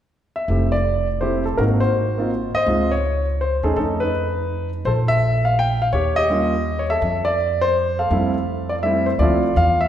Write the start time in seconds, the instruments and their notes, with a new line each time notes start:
0.36 grand piano E5
0.48 upright bass F1, grand piano A3 C4 E4 G4
0.72 grand piano D5
1.21 grand piano A3 C4 E4 G4 C5
1.45 grand piano A4
1.57 upright bass G#1, grand piano A#3 C4 D#4 F#4 A#4
1.80 grand piano F#4 C5
2.17 grand piano A#3 C4 D#4 F4
2.54 grand piano C5 D#5, muted upright bass stroke
2.66 upright bass C#2, grand piano G#3 C4 D#4 F4
2.91 grand piano C#5
3.41 grand piano C5
3.63 upright bass D#2, grand piano A3 C#4 D#4 G#4 A4
3.76 upright bass F2, grand piano D#4 A4
4.00 grand piano D#4 B4
4.85 upright bass A#1, grand piano A4 C5
5.08 grand piano E5
5.45 grand piano F5
5.59 grand piano G5
5.82 grand piano F5
5.93 upright bass D#2, grand piano G4 C#5
6.16 grand piano G4 D#5
6.30 grand piano G3 A#3 C#4 F4
6.79 grand piano C#5
6.90 grand piano A4 E5
7.02 upright bass F2
7.25 grand piano D5
7.61 grand piano C5
7.99 grand piano A4 F5
8.10 upright bass F2, grand piano G3 A3 C4 E4
8.69 grand piano D5
8.83 grand piano G3 A3 C4 E4 E5
9.06 grand piano C5
9.19 upright bass D2, grand piano F3 A3 C4 E4 F4 D5
9.56 upright bass E2, grand piano F5
9.81 grand piano E5